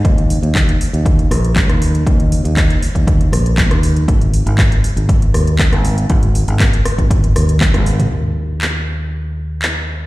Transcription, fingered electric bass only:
\new Staff \with { instrumentName = "Fingered electric bass" } { \clef bass \time 4/4 \key aes \lydian \tempo 4 = 119 ees,8. ees,8. r16 ees,8. bes,,8. ees,8. | ees,8. ees,8. r16 ees,8. bes,,8. ees,8. | aes,,8. aes,,8. r16 aes,,8. ees,8. aes,,8. | aes,,8. aes,,8. r16 aes,,8. ees,8. aes,,8. |
ees,1 | }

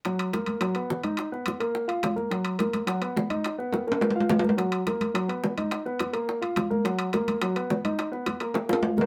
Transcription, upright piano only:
\new Staff \with { instrumentName = "Upright piano" } { \time 4/4 \key ces \lydian \tempo 4 = 212 <ges ges'>4 <bes bes'>4 <fis fis'>8 <b b'>4 <dis' dis''>8~ | <dis' dis''>8 <b b'>4 <bes bes'>4 <f' f''>4 <bes bes'>8 | <ges ges'>4 <bes bes'>4 <fis fis'>8 <b b'>4 <dis' dis''>8~ | <dis' dis''>8 <b b'>4 <bes bes'>4 <f' f''>4 <bes bes'>8 |
<ges ges'>4 <bes bes'>4 <fis fis'>8 <b b'>4 <dis' dis''>8~ | <dis' dis''>8 <b b'>4 <bes bes'>4 <f' f''>4 <bes bes'>8 | <ges ges'>4 <bes bes'>4 <fis fis'>8 <b b'>4 <dis' dis''>8~ | <dis' dis''>8 <b b'>4 <bes bes'>4 <f' f''>4 <bes bes'>8 | }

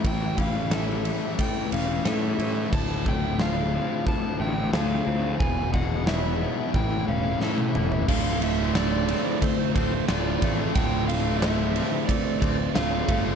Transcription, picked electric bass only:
\new Staff \with { instrumentName = "Picked electric bass" } { \clef bass \time 4/4 \key a \phrygian \tempo 4 = 90 a,,2 r8 e,,8 a,8 a,8 | d,,2 r8 a,,8 d,8 d,8 | e,,2 a,,8 e,,8 a,8 e,,8 | \key d \minor d,,2 r8 d,,8 d,,8 a,,8 |
d,,2 r8 d,,8 d,,8 g,,8 | }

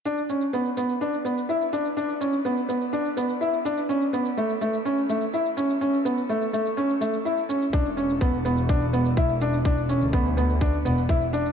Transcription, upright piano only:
\new Staff \with { instrumentName = "Upright piano" } { \time 4/4 \key b \minor \tempo 4 = 125 d'8 cis'8 b8 b8 d'8 b8 e'8 d'8 | d'8 cis'8 b8 b8 d'8 b8 e'8 d'8 | cis'8 b8 a8 a8 cis'8 a8 e'8 cis'8 | cis'8 b8 a8 a8 cis'8 a8 e'8 cis'8 |
d'8 cis'8 b8 b8 d'8 b8 e'8 d'8 | d'8 cis'8 b8 b8 d'8 b8 e'8 d'8 | }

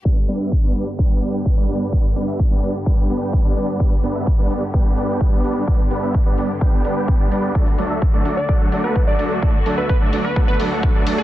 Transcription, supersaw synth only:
\new Staff \with { instrumentName = "Supersaw synth" } { \time 4/4 \key g \major \tempo 4 = 128 <g b d' b' d''>16 r16 <g b d' b' d''>16 <g b d' b' e''>16 r16 <g b d' b' d''>16 <g b d' b' d''>16 r16 <g b d' b' g''>8 <g b d' b' d''>16 <g b d' b' g''>8 <g b d' b' d''>16 <g b d' b' d''>8 | <g b d' b' d''>16 r16 <g b d' b' d''>16 <g b d' b' e''>16 r16 <g b d' b' d''>16 <g b d' b' d''>16 r16 <g b d' b' g''>8 <g b d' b' d''>16 <g b d' b' g''>8 <g b d' b' d''>16 <g b d' b' d''>8 | <g b d' b' d''>16 r16 <g b d' b' d''>16 <g b d' b' e''>16 r16 <g b d' b' d''>16 <g b d' b' d''>16 r16 <g b d' b' g''>8 <g b d' b' d''>16 <g b d' b' g''>8 <g b d' b' d''>16 <g b d' b' d''>8 | <g b d' b' d''>16 r16 <g b d' b' d''>16 <g b d' b' e''>16 r16 <g b d' b' d''>16 <g b d' b' d''>16 r16 <g b d' b' g''>8 <g b d' b' d''>16 <g b d' b' g''>8 <g b d' b' d''>16 <g b d' b' d''>8 |
<fis a d' a' d''>16 r16 <fis a d' a' d''>16 <fis a d' a' e''>16 r16 <fis a d' a' d''>16 <fis a d' a' d''>16 r16 <fis a d' a' fis''>8 <fis a d' a' d''>16 <fis a d' a' fis''>8 <fis a d' a' d''>16 <fis a d' a' d''>8 | <fis a d' a' d''>16 r16 <fis a d' a' d''>16 <fis a d' a' e''>16 r16 <fis a d' a' d''>16 <fis a d' a' d''>16 r16 <fis a d' a' fis''>8 <fis a d' a' d''>16 <fis a d' a' fis''>8 <fis a d' a' d''>16 <fis a d' a' d''>8 | }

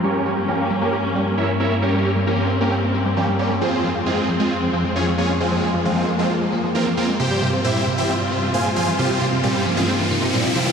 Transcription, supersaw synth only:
\new Staff \with { instrumentName = "Supersaw synth" } { \time 4/4 \key f \minor \tempo 4 = 134 <des' g' bes' des''>8 r8 <bes des' g' bes'>8 r16 <bes des' g' bes'>16 r4 <e' bes' des'' e''>16 r16 <e' bes' des'' e''>16 r16 | <des' g' bes' des''>8 r8 <bes des' g' bes'>8 r16 <bes des' g' bes'>16 r4 <g bes des' g'>16 r16 <g bes des' g'>16 r16 | <c' f' aes' c''>8 r8 <aes c' f' aes'>8 r16 <aes c' f' aes'>16 r4 <des' f' aes' des''>16 r16 <des' f' aes' des''>16 r16 | <aes c' f' aes'>8 r8 <f aes c' f'>8 r16 <f aes c' f'>16 r4 <bes c' f' bes'>16 r16 <bes c' f' bes'>16 r16 |
<g' c'' g''>8 r8 <e' g' c'' e''>8 r16 <e' g' c'' e''>16 r4 <aes' c'' f'' aes''>16 r16 <aes' c'' f'' aes''>16 r16 | <c' f' g' c''>8 r8 <g c' g'>8 r16 <aes c' f' aes'>16 r4 <f g c' f'>16 r16 <f g c' f'>16 r16 | }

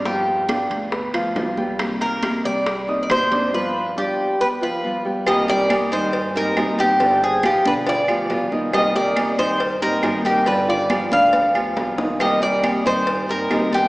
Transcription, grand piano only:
\new Staff \with { instrumentName = "Grand piano" } { \time 4/4 \key c \minor \tempo 4 = 138 <f f' f''>4 <d' d'' d'''>4 <b b' b''>8 <f f' f''>4 <g g' g''>8~ | <g g' g''>8 <bes bes' bes''>4 <g g' g''>4 <ees' ees'' ees'''>4 <d' d'' d'''>8 | <f f' f''>4 <d' d'' d'''>4 <b b' b''>8 <f f' f''>4 <g g' g''>8 | <g g' bes'>8 <g g' bes'>4 <ees ees' ees''>4 <g g' bes'>8 <ees ees' ees''>4 |
<d d' d''>4 <f f' g'>8 <d d' d''>4 <f f' g'>4 <ees ees' ees''>8 | <g g' bes'>8 <g g' bes'>4 <ees ees' ees''>4 <g g' bes'>8 <ees ees' ees''>4 | <d d' d''>4 <f f' g'>8 <d d' d''>4 <f f' g'>4 <ees ees' ees''>8 | <g g' bes'>8 <g g' bes'>4 <ees ees' ees''>4 <g g' bes'>8 <ees ees' ees''>4 | }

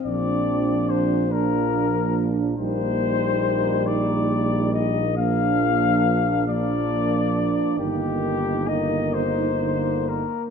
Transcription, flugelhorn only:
\new Staff \with { instrumentName = "Flugelhorn" } { \time 6/8 \key bes \major \tempo 4. = 46 d''4 c''8 bes'4 r8 | c''4. d''4 ees''8 | f''4. d''4. | g'4 ees''8 c''4 bes'8 | }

